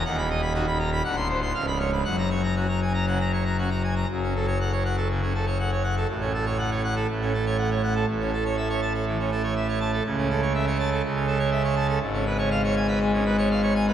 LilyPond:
<<
  \new Staff \with { instrumentName = "Pipe organ" } { \time 4/4 \key fis \major \tempo 4 = 121 << { fis''16 b''16 dis''16 b''16 fis'16 b''16 ais''16 b''16 fis''16 c'''16 c''16 c'''16 eis''16 b''16 cis''16 b''16 | fis''16 ais''16 cis''16 ais''16 fis'16 ais''16 gis''16 ais''16 fis''16 ais''16 cis''16 ais''16 fis'16 ais''16 gis''16 ais''16 | \key fis \minor r4 fis''16 r2 r8. | r4 fis''16 r2 r8. |
r4. a''16 r2 r16 | r4. a''16 r2 r16 | \key cis \mixolydian r4. gis''16 r2 r16 | } \\ { dis,4 dis'16 r8. d,4 cis,4 | fis,4 cis'16 r8. cis16 r8. cis'16 r8. | fis,16 cis'16 a'16 cis''16 r16 cis''16 fis''16 a'16 cis16 cis'16 a'16 cis''16 fis''16 cis''16 fis''16 a'16 | a,16 cis'16 a'16 cis''16 r16 cis''16 fis''16 a'16 a,16 cis'16 a'16 cis''16 fis''16 cis''16 fis''16 a'16 |
a,16 cis'16 a'16 cis''16 e''16 cis''16 r16 a'16 e16 cis'16 a'16 cis''16 e''16 cis''16 a''16 a'16 | cis16 cis'16 a'16 cis''16 e''16 cis''16 r16 a'16 cis16 cis'16 a'16 cis''16 e''16 cis''16 a''16 a'16 | gis,16 cis'16 b'16 cis''16 eis''16 cis''16 r16 b'16 gis16 cis'16 b'16 cis''16 eis''16 cis''16 gis''16 b'16 | } >> }
  \new Staff \with { instrumentName = "Pipe organ" } { \clef bass \time 4/4 \key fis \major dis,,2 d,,4 cis,,4 | fis,,1 | \key fis \minor fis,,1 | a,,2 a,,2 |
a,,1 | cis,2 cis,2 | \key cis \mixolydian gis,,1 | }
>>